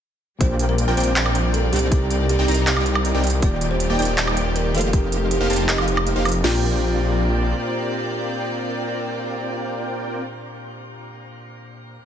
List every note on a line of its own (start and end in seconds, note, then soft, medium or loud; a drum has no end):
0.39 0.86 A#1 loud
0.39 1.69 A#2 loud
0.39 1.90 G3 medium
0.39 1.70 A#3 medium
0.39 4.90 A#3 medium
0.39 0.86 C4 medium
0.39 1.70 D4 medium
0.39 0.86 F4 medium
0.39 1.71 G4 medium
0.39 0.86 A#4 medium
0.39 0.66 C5 loud
0.39 0.86 D5 medium
0.39 3.40 D5 medium
0.39 0.85 G5 loud
0.39 0.86 G5 loud
0.39 kick loud
0.39 closed hi-hat medium
0.43 1.71 C5 loud
0.59 closed hi-hat medium
0.69 0.94 A#4 medium
0.78 closed hi-hat medium
0.88 0.95 A#1 loud
0.88 0.96 C4 loud
0.88 0.96 F4 medium
0.88 0.96 A#4 medium
0.88 0.96 D5 medium
0.88 0.96 G5 loud
0.97 1.14 A#1 loud
0.97 1.13 C4 loud
0.97 1.13 F4 medium
0.97 1.13 A#4 medium
0.97 1.22 C5 medium
0.97 1.13 D5 medium
0.97 1.13 G5 loud
0.97 closed hi-hat soft
1.00 closed hi-hat medium
1.04 closed hi-hat medium
1.16 1.71 A#1 loud
1.16 1.70 C4 medium
1.16 1.70 F4 medium
1.16 1.70 A#4 medium
1.16 1.70 D5 medium
1.16 1.70 G5 medium
1.16 1.70 G5 loud
1.16 clap loud
1.16 closed hi-hat medium
1.26 high woodblock medium
1.35 closed hi-hat medium
1.54 1.71 A4 medium
1.54 closed hi-hat medium
1.72 2.37 C2 loud
1.72 1.89 A#2 medium
1.72 1.89 A#3 medium
1.72 2.37 C4 loud
1.72 1.90 D4 medium
1.72 2.37 D#4 medium
1.72 1.89 G4 medium
1.72 1.90 G4 medium
1.72 2.37 A#4 medium
1.72 1.90 C5 loud
1.72 2.37 D5 medium
1.72 2.36 G5 loud
1.72 2.37 G5 loud
1.72 closed hi-hat medium
1.76 closed hi-hat medium
1.79 closed hi-hat medium
1.90 3.21 C3 loud
1.90 3.41 C3 medium
1.90 3.21 C4 medium
1.90 3.41 D#4 medium
1.90 3.22 D#4 medium
1.90 2.25 G4 medium
1.90 3.22 A#4 medium
1.90 3.22 D5 loud
1.90 kick loud
1.90 closed hi-hat medium
2.11 closed hi-hat medium
2.29 2.63 G4 medium
2.29 closed hi-hat medium
2.39 2.46 C2 loud
2.39 2.46 C4 loud
2.39 2.46 D#4 medium
2.39 2.46 A#4 medium
2.39 2.46 D5 medium
2.39 2.46 G5 loud
2.48 2.65 C2 medium
2.48 2.65 C4 loud
2.48 2.65 D#4 medium
2.48 2.65 A#4 medium
2.48 2.65 D5 medium
2.48 2.65 A#5 loud
2.48 closed hi-hat soft
2.51 closed hi-hat medium
2.55 closed hi-hat medium
2.67 2.75 C2 loud
2.67 2.74 C4 loud
2.67 2.74 D#4 medium
2.67 3.35 G4 loud
2.67 2.74 A#4 medium
2.67 2.74 D5 medium
2.67 2.74 F5 loud
2.67 clap loud
2.67 closed hi-hat medium
2.76 3.12 C2 loud
2.76 3.12 C4 medium
2.76 3.12 D#4 medium
2.76 3.12 A#4 medium
2.76 3.12 D5 medium
2.76 3.12 G5 medium
2.76 high woodblock medium
2.86 closed hi-hat medium
2.95 high woodblock medium
3.05 closed hi-hat medium
3.14 3.40 C2 loud
3.14 3.26 C4 medium
3.14 3.26 D#4 medium
3.14 3.26 A#4 medium
3.14 3.26 D5 medium
3.14 3.26 G5 medium
3.23 3.40 C3 medium
3.23 3.40 C4 medium
3.23 3.40 D#4 medium
3.23 3.41 A#4 medium
3.23 3.41 D5 loud
3.23 closed hi-hat medium
3.27 closed hi-hat medium
3.30 closed hi-hat medium
3.41 3.88 D#1 loud
3.41 4.71 D#3 loud
3.41 4.92 D#3 medium
3.41 4.72 A#3 medium
3.41 3.88 A#3 medium
3.41 3.88 D#4 medium
3.41 4.72 F4 medium
3.41 3.88 G4 medium
3.41 6.42 G4 medium
3.41 4.73 G4 medium
3.41 3.67 D5 loud
3.41 3.88 D5 medium
3.41 4.92 D5 medium
3.41 4.73 D5 loud
3.41 3.87 G5 loud
3.41 3.88 G5 loud
3.41 kick loud
3.41 closed hi-hat medium
3.61 closed hi-hat medium
3.71 3.96 C5 loud
3.80 closed hi-hat medium
3.90 3.97 D#1 loud
3.90 3.98 A#3 loud
3.90 3.98 D#4 medium
3.90 3.98 G4 medium
3.90 3.98 D5 medium
3.90 3.98 G5 loud
3.99 4.16 D#1 loud
3.99 4.15 A#3 loud
3.99 4.15 D#4 medium
3.99 4.15 G4 medium
3.99 4.24 D5 medium
3.99 4.15 D5 medium
3.99 4.15 G5 loud
3.99 closed hi-hat soft
4.02 closed hi-hat medium
4.05 closed hi-hat medium
4.18 4.76 D#1 loud
4.18 4.72 A#3 medium
4.18 4.72 D#4 medium
4.18 4.72 G4 medium
4.18 4.72 D5 medium
4.18 4.72 G5 medium
4.18 4.72 G5 loud
4.18 clap loud
4.18 closed hi-hat medium
4.27 high woodblock medium
4.37 closed hi-hat medium
4.56 4.72 A#4 medium
4.56 closed hi-hat medium
4.74 5.39 F1 loud
4.74 4.91 D#3 medium
4.74 4.91 A#3 medium
4.74 5.38 A#3 loud
4.74 5.38 D#4 medium
4.74 4.91 F4 medium
4.74 5.38 G4 medium
4.74 4.92 G4 medium
4.74 4.91 A4 medium
4.74 5.38 C5 medium
4.74 4.92 D5 loud
4.74 5.38 F5 loud
4.74 closed hi-hat soft
4.78 closed hi-hat medium
4.81 closed hi-hat medium
4.92 6.22 F3 loud
4.92 6.43 F3 medium
4.92 6.23 C4 medium
4.92 6.23 D#4 medium
4.92 6.43 D#4 medium
4.92 5.27 G4 medium
4.92 6.24 G4 medium
4.92 6.43 A#4 medium
4.92 6.24 A#4 loud
4.92 kick loud
4.92 closed hi-hat medium
5.12 closed hi-hat medium
5.31 5.64 G4 medium
5.31 closed hi-hat medium
5.40 5.48 F1 loud
5.40 5.48 A#3 loud
5.40 5.48 D#4 medium
5.40 5.48 G4 medium
5.40 5.48 C5 medium
5.40 5.48 F5 loud
5.50 5.67 F1 medium
5.50 5.67 A#3 loud
5.50 5.67 D#4 medium
5.50 5.67 G4 medium
5.50 5.67 C5 medium
5.50 5.67 A5 loud
5.50 closed hi-hat soft
5.53 closed hi-hat medium
5.56 closed hi-hat medium
5.69 5.76 F1 loud
5.69 5.76 A#3 loud
5.69 5.76 D#4 medium
5.69 5.76 G4 medium
5.69 6.37 G4 loud
5.69 5.76 C5 medium
5.69 5.76 D#5 loud
5.69 clap loud
5.69 closed hi-hat medium
5.78 6.14 F1 loud
5.78 6.14 A#3 medium
5.78 6.14 D#4 medium
5.78 6.14 G4 medium
5.78 6.14 C5 medium
5.78 6.14 F5 medium
5.78 high woodblock medium
5.88 closed hi-hat medium
5.97 high woodblock medium
6.07 closed hi-hat medium
6.16 6.42 F1 loud
6.16 6.27 A#3 medium
6.16 6.27 D#4 medium
6.16 6.28 G4 medium
6.16 6.27 C5 medium
6.16 6.27 F5 medium
6.24 6.42 F3 medium
6.24 6.42 C4 medium
6.24 6.42 D#4 medium
6.24 6.42 G4 medium
6.24 6.43 A#4 loud
6.24 closed hi-hat soft
6.24 high woodblock medium
6.29 closed hi-hat medium
6.32 closed hi-hat medium
6.41 7.53 A#1 loud
6.41 10.91 A#2 medium
6.41 10.91 A#3 medium
6.41 10.22 A#3 medium
6.41 10.22 C4 medium
6.41 10.92 D4 medium
6.41 10.22 F4 medium
6.41 10.92 F4 medium
6.41 10.22 G4 medium
6.41 10.22 A#4 medium
6.41 10.22 C5 medium
6.41 10.22 D5 medium
6.41 10.22 G5 medium
6.41 10.92 G5 loud
6.41 snare loud
6.41 crash medium
6.46 10.93 G4 medium